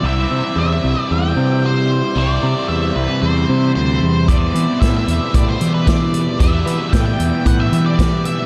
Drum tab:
HH |--------|--------|xxxxxxxx|xxxxxxxx|
SD |--------|--------|--o---o-|--o---o-|
BD |--------|--------|o-o-o-o-|o-o-o-o-|